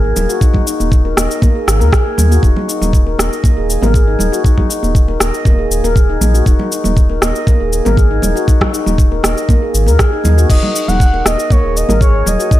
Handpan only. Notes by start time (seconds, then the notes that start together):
0.04 A#3
0.29 F#4
0.41 D#4
0.67 D#4
1.05 A#4
1.17 D#5
1.42 A#3
1.55 G#4
1.80 A#4
1.93 G#4
2.06 A#3
2.31 F#4
2.43 D#4
2.68 D#4
3.06 A#4
3.19 D#5
3.44 A#3
3.57 G#4
3.82 A#4
3.95 G#4
4.07 D#4
4.32 F#4
4.44 D#4
4.70 D#4
5.08 A#4
5.20 D#5
5.45 A#3
5.59 G#4
5.84 A#4
5.96 G#4
6.09 D#4
6.34 F#4
6.46 D#4
6.72 D#4
7.10 A#4
7.22 D#5
7.47 A#3
7.60 G#4
7.85 A#4
7.97 G#4
8.11 D#4
8.36 F#4
8.48 D#4
8.73 D#4
9.11 A#4
9.24 D#5
9.49 A#3
9.62 G#4
9.87 A#4
9.99 G#4
10.12 D#4
10.38 F#4
10.49 D#4
10.75 D#4
11.13 A#4
11.25 D#5
11.50 A#3
11.64 G#4
11.89 A#4
12.01 G#4
12.14 C#5
12.39 F#4
12.51 D#4